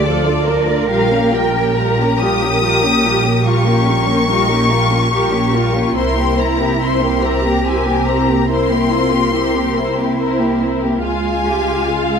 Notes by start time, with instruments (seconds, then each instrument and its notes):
Already playing: double bass section D2, violin section D5
0.04 viola section F3 F4, violin section D4 A4, cello section A4
0.24 viola section A3 D4, violin section F4 D5
0.45 viola section F3 F4, violin section D4 A4, cello section A#4
0.66 viola section A3 D4, violin section F4 D5
0.89 double bass section A#1, viola section G3 F4, violin section G4 A#4 F5
1.11 viola section A#3 C#4, violin section G4 A#4
1.33 viola section G3 F4, violin section G4 A#4 G5
1.55 viola section A#3 C#4, violin section G4 A#4
1.77 viola section G3 F4, violin section G4 A#4 A#5
2.00 viola section A#3 C#4, violin section G4 A#4
2.20 viola section G3 F4, violin section G4 A#4 D#6, cello section G4
2.43 viola section A#3 C#4, violin section G4 A#4
2.62 viola section G3 F4, violin section G4 A#4
2.83 viola section A#3 C#4, violin section G4 A#4
3.02 viola section G3 F4, violin section G4 A#4
3.24 viola section A#3 C#4, violin section G4 A#4
3.44 viola section G3 F4, cello section F4, violin section G4 A#4 C#6
3.66 viola section A#3 C#4, violin section G4 A#4
3.86 viola section G3 F4, cello section C#4, violin section G4 A#4
4.07 viola section A#3 C#4, violin section G4 A#4
4.28 viola section G3 F4, cello section D#4, violin section G4 A#4
4.48 viola section A#3 C#4, violin section G4 A#4
4.70 viola section G3 F4, cello section F4, violin section G4 A#4
4.90 viola section A#3 C#4, violin section G4 A#4
5.12 viola section G3 F4, violin section G4 A#4, cello section G4
5.31 viola section A#3 C#4, violin section G4 A#4
5.52 viola section G3 F4, cello section F4, violin section G4 A#4
5.74 viola section A#3 C#4, violin section G4 A#4
5.95 double bass section C2, viola section C4 E4, cello section E4, violin section A#4 C5 C6
6.16 viola section A#3 C4, violin section G4 A#4
6.36 viola section C4 E4, violin section A#4 C5 A#5
6.58 viola section A#3 C4, violin section G4 A#4
6.80 viola section C4 E4, violin section A#4 C5 C6
7.02 viola section A#3 C4, violin section G4 A#4
7.22 viola section C4 E4, cello section G4, violin section A#4 C5 A#5
7.43 viola section A#3 C4, violin section G4 A#4
7.65 viola section C4 E4, violin section A#4 C5 G#5
7.86 viola section A#3 C4, violin section G4 A#4
8.06 viola section C4 E4, violin section A#4 C5 A#5
8.28 viola section A#3 C4, violin section G4 A#4
8.48 viola section C4 E4, cello section E4, violin section A#4 C5 C6
8.70 viola section A#3 C4, violin section G4 A#4
8.90 viola section C4 E4, cello section F4, violin section A#4 C5
9.11 viola section A#3 C4, violin section G4 A#4
9.32 viola section C4 E4, cello section G4, violin section A#4 C5
9.53 viola section A#3 C4, violin section G4 A#4
9.75 viola section C4 E4, cello section E4, violin section A#4 C5
9.97 viola section A#3 C4, violin section G4 A#4
10.18 viola section C4 E4, violin section A#4 C5
10.40 viola section A#3 C4, violin section G4 A#4
10.61 viola section C4 E4, violin section A#4 C5
10.81 viola section A#3 C4, violin section G4 A#4
11.03 double bass section C#2, viola section G#3 F4, cello section F4, violin section F4 F5 G#5
11.46 cello section G4
11.88 cello section F4